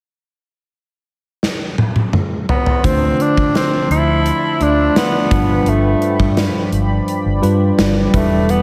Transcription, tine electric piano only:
2.83 3.86 D3 medium
2.83 3.74 A3 medium
2.83 3.74 D4 medium
2.83 3.74 F4 medium
2.83 3.74 C5 medium
4.60 5.28 A3 medium
4.60 5.28 D4 medium
4.60 5.28 F4 medium
4.60 5.29 D5 medium
5.30 6.33 G2 medium
5.30 6.44 G3 medium
5.30 6.44 D4 medium
5.30 6.44 F4 medium
5.30 6.45 B4 medium
7.42 8.10 G3 medium
7.42 8.10 D4 medium
7.42 8.10 F4 medium
7.42 8.10 B4 medium
8.13 8.62 E3 medium
8.13 8.62 G3 medium
8.13 8.62 D4 medium
8.13 8.62 E4 medium
8.13 8.62 B4 medium

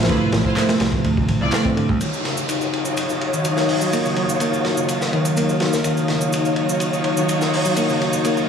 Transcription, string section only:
0.09 0.23 E4 medium
0.09 0.23 F4 medium
0.09 0.23 B4 loud
0.45 0.59 E4 medium
0.45 0.59 F4 medium
0.45 0.59 C5 loud
1.41 1.55 E4 medium
1.41 1.55 F4 medium
1.41 1.55 D5 loud
2.01 5.82 D#4 medium
2.01 5.82 F4 medium
2.01 5.82 F#4 medium
2.01 5.82 C#5 loud
5.85 8.49 D#4 medium
5.85 8.49 F4 medium
5.85 8.49 F#4 medium
5.85 8.49 C#5 medium

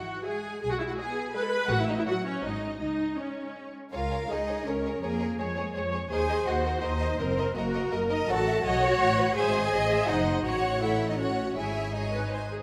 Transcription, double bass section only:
0.62 0.91 B1 medium
1.70 1.99 A1 medium
2.43 2.73 G#1 medium
2.80 3.10 C#2 soft
3.94 4.26 C#2 medium
4.30 4.62 C#2 medium
4.67 4.99 C#2 medium
5.03 5.35 F2 medium
5.40 5.71 F2 medium
5.76 6.07 F2 medium
6.12 6.44 D#2 medium
6.48 6.80 D#2 medium
6.84 7.16 D#2 medium
7.20 7.52 F#1 medium
7.57 7.88 F#1 medium
7.93 8.25 F#1 medium
8.30 8.63 A1 medium
8.65 9.00 B1 medium
9.01 9.36 A1 medium
9.37 9.72 G#1 medium
9.73 10.08 A1 medium
10.10 10.45 F#1 medium
10.46 11.53 A1 medium
11.57 12.52 G#1 medium

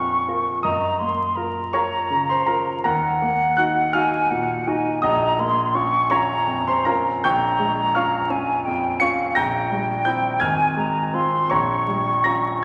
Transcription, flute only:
0.00 0.59 C#6 medium
0.64 1.01 A#5 soft
0.99 1.38 C6 soft
1.36 2.84 A#5 medium
2.86 3.95 F#5 medium
3.93 4.32 G#5 medium
4.30 4.69 F#5 medium
4.67 5.03 G#5 medium
5.03 5.41 A#5 medium
5.40 5.77 C6 medium
5.75 6.12 C#6 medium
6.11 6.96 A#5 medium
7.25 8.32 A#5 medium
8.31 8.67 G#5 medium
8.65 9.01 G5 medium
9.00 9.37 F5 medium
9.35 10.42 G5 medium
10.41 10.77 G#5 medium
10.78 11.16 A#5 medium
11.15 11.52 C6 medium
11.51 12.64 C#6 medium

